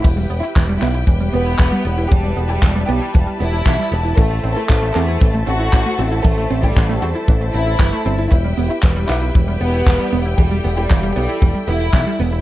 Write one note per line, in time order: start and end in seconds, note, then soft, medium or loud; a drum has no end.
0.04 0.25 E1 loud
0.04 0.10 E3 medium
0.04 0.31 E4 loud
0.04 12.41 E4 medium
0.04 4.14 G4 medium
0.04 4.14 B4 medium
0.04 2.09 G5 medium
0.04 kick loud
0.04 closed hi-hat medium
0.04 crash loud
0.04 tambourine soft
0.17 0.23 G3 medium
0.17 closed hi-hat medium
0.29 0.39 B3 medium
0.29 closed hi-hat medium
0.29 tambourine medium
0.43 0.70 E4 loud
0.43 0.49 E4 medium
0.43 closed hi-hat medium
0.43 tambourine soft
0.56 0.76 E1 loud
0.56 0.65 E3 medium
0.56 kick loud
0.56 clap loud
0.56 closed hi-hat medium
0.56 tambourine soft
0.69 0.81 G3 loud
0.69 closed hi-hat medium
0.81 1.02 B1 loud
0.81 0.91 B3 loud
0.81 1.18 E4 medium
0.81 clap medium
0.81 closed hi-hat medium
0.81 tambourine medium
0.94 1.04 E4 medium
0.94 closed hi-hat medium
0.94 tambourine soft
1.07 1.28 E1 medium
1.07 1.13 E3 medium
1.07 kick loud
1.07 closed hi-hat medium
1.07 tambourine soft
1.20 1.26 G3 medium
1.20 closed hi-hat medium
1.33 1.54 E1 medium
1.33 2.01 B3 loud
1.33 1.43 B3 medium
1.33 closed hi-hat medium
1.33 tambourine medium
1.46 1.52 E4 medium
1.46 closed hi-hat medium
1.46 tambourine soft
1.59 1.70 E1 medium
1.59 1.69 E3 medium
1.59 kick loud
1.59 clap loud
1.59 closed hi-hat medium
1.59 tambourine soft
1.72 1.84 G3 loud
1.85 2.06 E1 medium
1.85 1.95 B3 loud
1.85 closed hi-hat medium
1.85 tambourine medium
1.98 2.07 E4 medium
1.98 closed hi-hat medium
1.98 tambourine soft
2.10 2.32 E1 medium
2.10 2.17 E3 medium
2.10 2.38 G3 medium
2.10 2.38 G4 loud
2.10 8.28 A5 medium
2.10 kick loud
2.10 closed hi-hat medium
2.10 tambourine soft
2.24 2.30 G3 medium
2.24 closed hi-hat medium
2.36 2.57 E1 medium
2.36 2.46 B3 medium
2.36 closed hi-hat medium
2.36 tambourine medium
2.50 2.77 G3 medium
2.50 2.55 E4 medium
2.50 2.77 G4 loud
2.50 closed hi-hat medium
2.50 tambourine soft
2.62 2.83 E1 loud
2.62 2.72 E3 medium
2.62 kick loud
2.62 clap loud
2.62 closed hi-hat medium
2.75 2.88 G3 loud
2.75 closed hi-hat medium
2.88 2.99 B1 medium
2.88 3.24 G3 medium
2.88 2.98 B3 loud
2.88 3.24 G4 medium
2.88 closed hi-hat medium
2.88 tambourine medium
3.01 3.11 E4 medium
3.01 closed hi-hat medium
3.01 tambourine soft
3.14 3.25 E1 loud
3.14 3.20 E3 medium
3.14 kick loud
3.14 closed hi-hat medium
3.14 tambourine soft
3.27 3.33 G3 medium
3.27 closed hi-hat medium
3.40 3.61 E1 medium
3.40 3.50 B3 medium
3.40 4.07 E4 loud
3.40 closed hi-hat medium
3.40 tambourine medium
3.53 3.59 E4 medium
3.53 closed hi-hat medium
3.53 tambourine soft
3.66 3.76 B1 medium
3.66 3.76 E3 medium
3.66 kick loud
3.66 clap loud
3.66 closed hi-hat medium
3.66 tambourine soft
3.79 3.91 G3 loud
3.92 4.12 E1 loud
3.92 4.01 B3 loud
3.92 closed hi-hat medium
3.92 tambourine medium
4.05 4.14 E4 medium
4.05 closed hi-hat medium
4.05 tambourine soft
4.17 4.38 A1 loud
4.17 4.23 E3 medium
4.17 4.45 A3 medium
4.17 4.45 A4 loud
4.17 8.28 A4 medium
4.17 8.28 C5 medium
4.17 kick loud
4.17 closed hi-hat loud
4.17 tambourine soft
4.30 4.36 A3 medium
4.30 closed hi-hat medium
4.43 4.54 A1 medium
4.43 4.53 C4 medium
4.43 closed hi-hat medium
4.43 tambourine medium
4.56 4.83 A3 medium
4.56 4.62 E4 medium
4.56 4.83 A4 loud
4.56 closed hi-hat medium
4.56 tambourine soft
4.69 4.90 A1 loud
4.69 4.79 E3 medium
4.69 kick loud
4.69 clap loud
4.69 closed hi-hat medium
4.82 4.95 A3 loud
4.82 closed hi-hat medium
4.95 5.16 E2 loud
4.95 5.31 A3 medium
4.95 5.05 C4 loud
4.95 5.31 A4 loud
4.95 clap medium
4.95 closed hi-hat medium
4.95 tambourine medium
5.08 5.18 E4 medium
5.08 closed hi-hat medium
5.08 tambourine soft
5.20 5.42 A1 medium
5.20 5.27 E3 medium
5.20 kick loud
5.20 closed hi-hat medium
5.20 tambourine soft
5.34 5.40 A3 medium
5.34 closed hi-hat medium
5.47 5.68 A1 medium
5.47 5.57 C4 medium
5.47 6.14 F#4 loud
5.47 closed hi-hat medium
5.47 tambourine medium
5.60 5.66 E4 medium
5.60 closed hi-hat medium
5.60 tambourine soft
5.73 5.83 A1 medium
5.73 5.83 E3 medium
5.73 kick loud
5.73 clap loud
5.73 closed hi-hat medium
5.73 tambourine soft
5.86 5.98 A3 loud
5.98 6.19 A1 medium
5.98 6.08 C4 loud
5.98 closed hi-hat medium
5.98 tambourine medium
6.12 6.21 E4 medium
6.12 closed hi-hat medium
6.12 tambourine soft
6.24 6.45 A1 medium
6.24 6.30 E3 medium
6.24 6.52 A3 medium
6.24 6.52 A4 loud
6.24 kick loud
6.24 closed hi-hat medium
6.24 tambourine soft
6.37 6.43 A3 medium
6.37 closed hi-hat medium
6.50 6.71 A1 medium
6.50 6.60 C4 medium
6.50 closed hi-hat medium
6.50 tambourine medium
6.63 6.91 G3 medium
6.63 6.69 E4 medium
6.63 6.90 G4 medium
6.63 kick medium
6.63 closed hi-hat medium
6.63 tambourine soft
6.76 6.97 A1 loud
6.76 6.86 E3 medium
6.76 kick loud
6.76 clap loud
6.76 closed hi-hat medium
6.76 tambourine soft
6.89 7.02 A3 loud
6.89 closed hi-hat soft
7.02 7.12 E2 medium
7.02 7.12 C4 loud
7.02 7.38 F#4 medium
7.02 closed hi-hat medium
7.02 tambourine medium
7.15 7.25 E4 medium
7.15 closed hi-hat medium
7.15 tambourine soft
7.28 7.49 A1 medium
7.28 7.34 E3 medium
7.28 kick loud
7.28 closed hi-hat medium
7.28 tambourine soft
7.41 7.47 A3 medium
7.41 closed hi-hat soft
7.54 7.75 A1 loud
7.54 7.64 C4 medium
7.54 8.21 E4 loud
7.54 closed hi-hat medium
7.54 tambourine medium
7.67 7.73 E4 medium
7.67 closed hi-hat medium
7.67 tambourine soft
7.79 7.90 G1 medium
7.79 7.89 E3 medium
7.79 kick loud
7.79 clap loud
7.79 closed hi-hat medium
7.79 tambourine soft
7.93 8.05 A3 loud
8.05 8.26 G1 medium
8.05 8.15 C4 loud
8.05 closed hi-hat medium
8.05 tambourine medium
8.18 8.28 E4 medium
8.18 closed hi-hat medium
8.18 tambourine soft
8.31 8.52 E1 loud
8.31 8.37 E3 medium
8.31 8.58 E4 loud
8.31 12.41 G4 medium
8.31 10.36 B4 medium
8.31 12.41 G5 medium
8.31 kick loud
8.31 closed hi-hat medium
8.31 tambourine soft
8.43 8.50 G3 medium
8.43 closed hi-hat medium
8.57 8.68 E1 medium
8.57 8.67 B3 medium
8.57 open hi-hat loud
8.57 tambourine medium
8.70 8.97 E4 medium
8.70 8.76 E4 medium
8.70 closed hi-hat medium
8.70 tambourine soft
8.83 9.04 E1 medium
8.83 8.93 E3 medium
8.83 kick loud
8.83 clap loud
8.83 closed hi-hat medium
8.83 tambourine soft
8.96 9.08 G3 loud
8.96 closed hi-hat medium
9.09 9.30 B1 loud
9.09 9.19 B3 loud
9.09 9.45 E4 medium
9.09 clap medium
9.09 open hi-hat loud
9.09 tambourine medium
9.21 9.32 E4 medium
9.21 closed hi-hat medium
9.21 tambourine soft
9.35 9.56 E1 medium
9.35 9.41 E3 medium
9.35 kick loud
9.35 closed hi-hat medium
9.35 tambourine soft
9.48 9.54 G3 medium
9.48 closed hi-hat medium
9.60 9.81 E1 medium
9.60 9.70 B3 medium
9.60 10.28 B3 loud
9.60 open hi-hat loud
9.60 tambourine medium
9.73 9.79 E4 medium
9.73 closed hi-hat medium
9.73 tambourine soft
9.86 9.97 E1 medium
9.86 9.96 E3 medium
9.86 kick loud
9.86 clap loud
9.86 closed hi-hat medium
10.00 10.12 G3 loud
10.12 10.33 E1 medium
10.12 10.22 B3 loud
10.12 open hi-hat loud
10.12 tambourine medium
10.25 10.35 E4 medium
10.25 closed hi-hat medium
10.25 tambourine soft
10.38 10.59 E1 medium
10.38 10.44 E3 medium
10.38 10.65 G3 medium
10.38 10.65 G4 loud
10.38 12.41 A4 medium
10.38 kick loud
10.38 closed hi-hat medium
10.38 tambourine soft
10.51 10.57 G3 medium
10.51 closed hi-hat medium
10.64 10.85 E1 medium
10.64 10.74 B3 medium
10.64 open hi-hat loud
10.64 tambourine medium
10.77 11.04 G3 medium
10.77 10.83 E4 medium
10.77 11.04 G4 medium
10.77 closed hi-hat medium
10.77 tambourine soft
10.90 11.11 E1 loud
10.90 11.00 E3 medium
10.90 kick loud
10.90 clap loud
10.90 closed hi-hat medium
10.90 tambourine soft
11.03 11.15 G3 loud
11.03 closed hi-hat medium
11.16 11.26 B1 medium
11.16 11.52 G3 medium
11.16 11.26 B3 loud
11.16 11.52 G4 medium
11.16 open hi-hat loud
11.16 tambourine medium
11.29 11.38 E4 medium
11.29 closed hi-hat medium
11.29 tambourine soft
11.41 11.52 E1 loud
11.41 11.48 E3 medium
11.41 kick loud
11.41 closed hi-hat medium
11.41 tambourine soft
11.55 11.61 G3 medium
11.55 closed hi-hat medium
11.67 11.88 E1 medium
11.67 11.77 B3 medium
11.67 12.35 E4 loud
11.67 open hi-hat loud
11.67 tambourine medium
11.81 11.86 E4 medium
11.81 closed hi-hat medium
11.81 tambourine soft
11.93 12.04 B1 medium
11.93 12.03 E3 medium
11.93 kick loud
11.93 clap loud
11.93 closed hi-hat medium
11.93 tambourine soft
12.07 12.19 G3 loud
12.19 12.40 E1 loud
12.19 12.29 B3 loud
12.19 open hi-hat loud
12.19 tambourine medium
12.32 12.41 E4 medium
12.32 closed hi-hat medium
12.32 tambourine soft